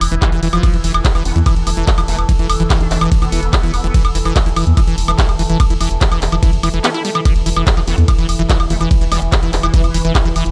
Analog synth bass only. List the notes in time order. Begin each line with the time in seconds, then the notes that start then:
0.01 E1
0.12 E1
0.32 E1
0.43 E1
0.53 E1
0.74 E1
0.84 E1
0.94 E1
1.15 E1
1.25 E1
1.36 E2
1.56 E1
1.67 E1
1.77 E1
1.98 E1
2.08 E1
2.19 E1
2.39 E1
2.50 E1
2.60 E1
2.81 E1
2.91 E1
3.01 E1
3.22 F1
3.32 E1
3.43 E1
3.63 E1
3.74 E1
3.84 E1
4.05 E1
4.15 E1
4.25 E1
4.46 E1
4.56 E1
4.67 E2
4.87 E1
4.98 E1
5.08 E1
5.29 E1
5.39 E1
5.50 E1
5.70 E1
5.81 E1
5.91 E1
6.12 E1
6.22 E1
6.32 E1
6.53 F1
6.63 E1
6.74 E1
7.36 E1
7.46 E1
7.56 E1
7.77 E1
7.87 E1
7.98 E2
8.19 E1
8.29 E1
8.39 E1
8.60 E1
8.70 E1
8.81 E1
9.01 E1
9.12 E1
9.22 E1
9.43 E1
9.53 E1
9.63 E1
9.84 F1
9.94 E1
10.05 E1
10.25 E1
10.36 E1
10.46 E1